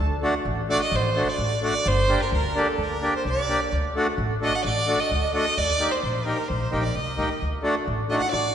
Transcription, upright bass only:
0, 0, Header, 1, 2, 480
1, 0, Start_track
1, 0, Tempo, 463320
1, 1926, Time_signature, 4, 2, 24, 8
1, 8856, End_track
2, 0, Start_track
2, 0, Title_t, "Upright bass"
2, 0, Program_c, 0, 32
2, 0, Note_on_c, 0, 38, 104
2, 279, Note_off_c, 0, 38, 0
2, 469, Note_on_c, 0, 33, 99
2, 761, Note_off_c, 0, 33, 0
2, 950, Note_on_c, 0, 33, 105
2, 1243, Note_off_c, 0, 33, 0
2, 1433, Note_on_c, 0, 33, 94
2, 1726, Note_off_c, 0, 33, 0
2, 1924, Note_on_c, 0, 31, 109
2, 2214, Note_off_c, 0, 31, 0
2, 2405, Note_on_c, 0, 38, 108
2, 2695, Note_off_c, 0, 38, 0
2, 2884, Note_on_c, 0, 38, 88
2, 3175, Note_off_c, 0, 38, 0
2, 3367, Note_on_c, 0, 36, 86
2, 3657, Note_off_c, 0, 36, 0
2, 3857, Note_on_c, 0, 38, 96
2, 4144, Note_off_c, 0, 38, 0
2, 4330, Note_on_c, 0, 33, 106
2, 4618, Note_off_c, 0, 33, 0
2, 4813, Note_on_c, 0, 33, 89
2, 5100, Note_off_c, 0, 33, 0
2, 5297, Note_on_c, 0, 38, 78
2, 5582, Note_off_c, 0, 38, 0
2, 5777, Note_on_c, 0, 39, 86
2, 6062, Note_off_c, 0, 39, 0
2, 6251, Note_on_c, 0, 34, 88
2, 6536, Note_off_c, 0, 34, 0
2, 6734, Note_on_c, 0, 34, 92
2, 6874, Note_off_c, 0, 34, 0
2, 6971, Note_on_c, 0, 34, 77
2, 7182, Note_off_c, 0, 34, 0
2, 7204, Note_on_c, 0, 36, 80
2, 7417, Note_off_c, 0, 36, 0
2, 7440, Note_on_c, 0, 38, 74
2, 7655, Note_off_c, 0, 38, 0
2, 7685, Note_on_c, 0, 38, 86
2, 7969, Note_off_c, 0, 38, 0
2, 8158, Note_on_c, 0, 33, 94
2, 8442, Note_off_c, 0, 33, 0
2, 8634, Note_on_c, 0, 33, 81
2, 8856, Note_off_c, 0, 33, 0
2, 8856, End_track
0, 0, End_of_file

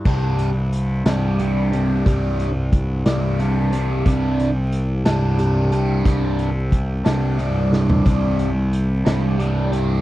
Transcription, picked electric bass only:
0, 0, Header, 1, 2, 480
1, 0, Start_track
1, 0, Tempo, 666667
1, 39, Time_signature, 6, 3, 24, 8
1, 7210, End_track
2, 0, Start_track
2, 0, Title_t, "Picked electric bass"
2, 0, Program_c, 0, 34
2, 41, Note_on_c, 0, 36, 92
2, 732, Note_off_c, 0, 36, 0
2, 760, Note_on_c, 0, 36, 89
2, 1452, Note_off_c, 0, 36, 0
2, 1486, Note_on_c, 0, 36, 88
2, 2174, Note_off_c, 0, 36, 0
2, 2202, Note_on_c, 0, 36, 88
2, 2892, Note_off_c, 0, 36, 0
2, 2924, Note_on_c, 0, 36, 91
2, 3613, Note_off_c, 0, 36, 0
2, 3642, Note_on_c, 0, 36, 94
2, 4331, Note_off_c, 0, 36, 0
2, 4361, Note_on_c, 0, 36, 85
2, 5050, Note_off_c, 0, 36, 0
2, 5082, Note_on_c, 0, 36, 92
2, 5771, Note_off_c, 0, 36, 0
2, 5804, Note_on_c, 0, 36, 98
2, 6492, Note_off_c, 0, 36, 0
2, 6525, Note_on_c, 0, 36, 95
2, 7210, Note_off_c, 0, 36, 0
2, 7210, End_track
0, 0, End_of_file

